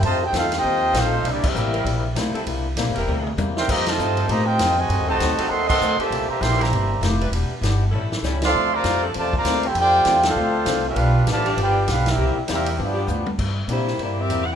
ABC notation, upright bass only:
X:1
M:4/4
L:1/8
Q:"Swing" 1/4=198
K:C
V:1 name="Upright bass" clef=bass
F,,2 E,,2 _E,,2 _B,,,2 | C,, z A,,,2 _B,,,2 D,, z | C,,2 (3_B,,, G,,, E,,, D,,2 E,,2 | F,,2 G,,2 A,,2 F,,2 |
(3^F,, ^D,, C,, =D,, z ^D,,2 =D,, z | C,, z _B,,,2 G,,,2 F,,,2 | E,,, z G,,,2 A,,,2 ^C,,2 | D,,2 F,,2 E,,2 D,,2 |
F,,2 E,,2 D,,2 C,,2 | B,,,2 A,,,2 G,,,2 B,,,2 | C,, z E,,2 G,,2 D,,2 | [K:Cmix] G,,2 B,,2 G,,2 E,,2 |]